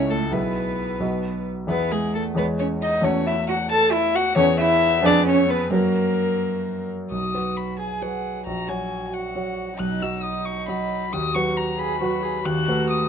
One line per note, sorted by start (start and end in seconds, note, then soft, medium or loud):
0.00 0.30 C#2 medium
0.00 0.30 E4 medium
0.00 0.31 A4 medium
0.00 0.12 C#5 medium
0.00 0.31 E5 medium
0.10 0.32 A3 medium
0.10 0.34 A4 medium
0.31 0.98 B1 soft
0.31 1.44 B3 medium
0.31 0.99 E4 soft
0.31 0.99 G#4 soft
0.31 1.47 B4 medium
0.31 0.99 E5 soft
1.00 1.67 B1 soft
1.00 1.66 B3 soft
1.00 1.67 F#4 soft
1.00 1.67 D#5 soft
1.67 2.33 E2 medium
1.67 2.34 B3 soft
1.67 1.93 B3 medium
1.67 2.34 G#4 soft
1.67 1.93 B4 medium
1.67 2.35 E5 soft
1.92 2.16 G#3 medium
1.92 2.14 G#4 medium
2.14 2.37 A3 medium
2.14 2.23 A4 medium
2.35 3.00 E2 medium
2.35 3.02 G#3 soft
2.35 2.45 B3 medium
2.35 3.02 G#4 soft
2.35 2.46 B4 medium
2.35 3.01 C#5 soft
2.59 2.67 C#4 medium
2.59 2.67 C#5 medium
2.82 3.05 D#4 medium
2.82 3.06 D#5 loud
3.02 4.32 E2 medium
3.02 4.33 A3 soft
3.02 3.26 C#4 medium
3.02 4.33 F#4 soft
3.02 4.33 C#5 soft
3.02 3.29 C#5 medium
3.26 3.34 E4 medium
3.26 3.49 E5 medium
3.48 3.56 F#4 medium
3.48 3.71 F#5 medium
3.70 3.94 A4 loud
3.70 3.93 A5 loud
3.92 4.16 E4 loud
3.92 4.17 E5 loud
4.15 4.36 F#4 medium
4.15 4.37 F#5 loud
4.36 5.02 E2 medium
4.36 5.02 B3 medium
4.36 4.45 C#4 medium
4.36 5.02 G#4 medium
4.36 5.03 C#5 medium
4.36 4.60 C#5 loud
4.60 5.04 E4 loud
4.60 5.07 E5 loud
5.03 5.70 F2 medium
5.03 5.70 B3 medium
5.03 5.26 D4 loud
5.03 5.71 G#4 medium
5.03 5.71 B4 medium
5.03 5.27 D5 loud
5.27 5.49 C#4 loud
5.27 5.51 C#5 loud
5.49 5.72 B3 medium
5.49 5.73 B4 loud
5.71 7.06 F#2 medium
5.71 7.06 F#3 soft
5.71 6.86 A#3 medium
5.71 7.06 F#4 soft
5.71 6.86 A#4 medium
5.71 7.07 C#5 soft
7.11 7.33 B1 soft
7.11 7.81 F#4 medium
7.11 7.58 D#6 medium
7.34 7.97 F#3 soft
7.34 7.98 F#4 soft
7.34 7.98 B4 soft
7.57 7.79 B5 medium
7.79 8.46 G#4 medium
7.79 8.04 G#5 medium
8.02 8.42 F#3 soft
8.02 8.43 F#4 soft
8.02 8.43 B4 soft
8.02 8.46 F#5 medium
8.46 8.68 A#1 soft
8.46 9.12 F#4 medium
8.46 8.70 A#5 medium
8.68 9.31 F#3 soft
8.68 9.32 F#4 soft
8.68 9.32 C#5 soft
8.68 9.16 G#5 medium
9.13 9.78 F#4 medium
9.13 9.81 F#5 medium
9.35 9.76 F#3 soft
9.35 9.76 F#4 soft
9.35 9.76 C#5 soft
9.79 10.01 B1 soft
9.79 11.10 D#4 medium
9.79 10.04 F#6 medium
10.02 10.64 F#3 soft
10.02 10.65 F#4 soft
10.02 10.65 D#5 soft
10.02 10.25 E6 medium
10.23 10.47 D#6 medium
10.46 10.68 C#6 medium
10.68 11.09 F#3 soft
10.68 11.09 F#4 soft
10.68 11.09 D#5 soft
10.68 11.14 B5 medium
11.12 11.34 D#2 medium
11.12 11.77 F#4 medium
11.12 11.36 D#6 medium
11.35 11.97 F#3 soft
11.35 11.97 F#4 soft
11.35 11.98 B4 soft
11.35 11.58 C#6 medium
11.57 11.81 A#5 medium
11.79 12.00 G#4 medium
11.79 12.47 B5 medium
12.01 12.41 F#3 soft
12.01 12.41 F#4 soft
12.01 12.24 F#4 medium
12.01 12.42 B4 medium
12.23 12.44 G#4 medium
12.45 12.67 D#2 medium
12.45 13.09 F#4 medium
12.45 12.90 F#6 loud
12.68 13.09 A3 soft
12.68 13.09 F#4 soft
12.68 13.09 B4 medium
12.90 13.09 D#6 medium